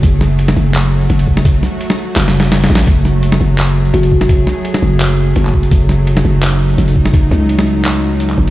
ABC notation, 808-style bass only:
X:1
M:4/4
L:1/8
Q:"Swing 16ths" 1/4=169
K:F#dor
V:1 name="808-style bass" clef=bass
F,,,3 F,,,3 F,,,2- | F,,, z3 F,,,3 A,,, | F,,,3 F,,,3 F,,,2- | F,,, z2 F,,,3 F,,,2 |
F,,,3 F,,,3 F,,,2- | F,,, C,,6 F,,, |]